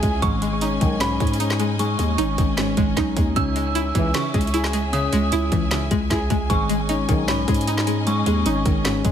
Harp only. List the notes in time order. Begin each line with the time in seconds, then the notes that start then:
Already playing: C#4 E4 G#4
0.23 G#3
0.62 C#4
1.00 C#4
1.40 D#4
1.79 G#3
2.18 C#4
2.59 C#4
2.97 D#4
3.36 C#4
3.76 E4
4.15 E4
4.54 G#4
4.92 C#4
5.32 E4
5.71 E4
6.10 G#4
6.50 G#3
6.90 C#4
7.28 C#4
7.67 D#4
8.06 G#3
8.46 C#4
8.86 C#4